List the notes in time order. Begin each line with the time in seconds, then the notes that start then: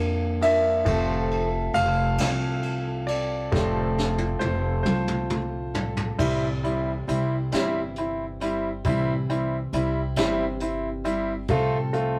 Already playing: F2 A#2 F3 A#3 D4 F4 A#4
0.41 F3 A#3 D4 F4 A#4 E5, ride
0.85 F1 F3 A3 C4 F4 A4, kick, ride
1.31 ride
1.74 F1 A3 C4 F4 A4 F5, ride
2.18 C2 F3 A3 C4 F4 A4, snare, ride
2.63 ride
3.07 C4 F4 A4 D5, ride
3.52 F1 F3 A3 C4 F4 A4, kick, snare
3.98 snare
4.18 high tom
4.39 F1 A3 C4 F4 A4 C5, high tom
4.83 C2 A3 C4 F4 A4 C5, mid tom
4.88 F3
5.08 mid tom
5.30 mid tom
5.74 C4 F4 A4, floor tom
5.97 floor tom
6.18 C2 C3 G3 C4 E4 C5, kick, crash
6.63 G3 C4 E4, closed hi-hat
7.07 C2 G3 C4 E4 C5, closed hi-hat
7.52 G1 C3 E3 G3 C4 E4 C5, snare, closed hi-hat
7.96 C4 E4, closed hi-hat
8.40 G3 C4 E4 C5, closed hi-hat
8.84 C2 C3 E3 G3 C4 E4 C5, kick, closed hi-hat
9.29 G3 C4 E4, closed hi-hat
9.72 C2 G3 C4 E4 C5, closed hi-hat
10.16 G1 C3 E3 G3 C4 E4 C5, snare, closed hi-hat
10.60 C4 E4, closed hi-hat
11.04 G3 C4 E4 C5, closed hi-hat
11.48 C2 C3 F3 A3 C4 F4 A4, kick, closed hi-hat
11.93 A3 C4 F4, closed hi-hat